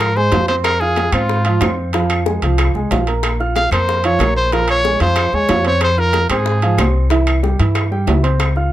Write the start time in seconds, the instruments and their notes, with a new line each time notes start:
Already playing: upright bass G#2, grand piano F3 F4 F5, trumpet A#4
0.00 high bongo, claves
0.17 grand piano G#3 G#4 G#5, trumpet C5, high bongo
0.32 upright bass F2, grand piano F3 F4 F5, high bongo, low bongo, high timbale, low timbale
0.48 grand piano C4 C5 C6, trumpet C5, high timbale
0.64 trumpet A#4, high bongo, high timbale, claves
0.80 grand piano F4 F5 F6, trumpet G#4, high bongo
0.96 high bongo, high timbale, low timbale
1.12 upright bass G#2, grand piano C4 C5 C6, trumpet F4, high bongo, high timbale, claves
1.29 high bongo
1.45 grand piano F3 F4 F5, high bongo, high timbale
1.61 upright bass F2, grand piano C4 C5 C6, high bongo, low bongo, high timbale, low timbale, claves
1.93 grand piano F3 F4 F5, high bongo, high timbale
2.10 high bongo, high timbale, claves
2.26 grand piano G#3 G#4 G#5, high bongo, low timbale
2.42 upright bass C2, grand piano F3 F4 F5, high bongo, high timbale
2.58 high bongo, high timbale, claves
2.74 upright bass C2, grand piano G#3 G#4 G#5, high bongo
2.91 upright bass A#1, grand piano F3 F4 F5, high bongo, low bongo, high timbale, low timbale
3.07 grand piano A#3 A#4 A#5, high timbale
3.23 high bongo, high timbale, claves
3.40 grand piano F4 F5 F6, high bongo
3.56 trumpet F5, high bongo, high timbale, low timbale
3.71 upright bass F2, grand piano A#3 A#4 A#5, trumpet C5, high bongo, high timbale, claves
3.89 high bongo
4.04 grand piano F3 F4 F5, trumpet C#5, high bongo, high timbale
4.19 upright bass A#1, grand piano A#3 A#4 A#5, high bongo, low bongo, high timbale, low timbale, claves
4.37 trumpet C5
4.52 grand piano F3 F4 F5, trumpet A#4, high bongo, high timbale
4.68 trumpet C#5, high bongo, high timbale, claves
4.84 grand piano G#3 G#4 G#5, high bongo, low timbale
5.00 upright bass F2, grand piano F3 F4 F5, trumpet C5, high bongo, high timbale
5.16 high bongo, high timbale, claves
5.33 upright bass D#2, grand piano G#3 G#4 G#5, trumpet C#5, high bongo
5.49 upright bass F2, grand piano F3 F4 F5, high bongo, low bongo, high timbale, low timbale
5.65 grand piano C4 C5 C6, trumpet C#5, high timbale
5.81 trumpet C5, high bongo, high timbale, claves
5.97 grand piano F4 F5 F6, trumpet A#4, high bongo
6.13 high bongo, high timbale, low timbale
6.30 upright bass G#2, grand piano C4 C5 C6, trumpet G#4, high bongo, high timbale, claves
6.46 high bongo
6.62 grand piano F3 F4 F5, high bongo, high timbale
6.78 upright bass C2, grand piano C4 C5 C6, high bongo, low bongo, high timbale, low timbale, claves
7.10 grand piano E3 E4 E5, high bongo, high timbale
7.27 high bongo, high timbale, claves
7.43 grand piano G3 G4 G5, high bongo, low timbale
7.59 upright bass G2, grand piano E3 E4 E5, high bongo, high timbale
7.75 high bongo, high timbale, claves
7.91 grand piano G3 G4 G5, high bongo
8.07 upright bass C#2, grand piano E3 E4 E5, high bongo, low bongo, high timbale, low timbale
8.23 grand piano C4 C5 C6, high timbale
8.40 high bongo, high timbale, claves
8.56 grand piano F4 F5 F6, high bongo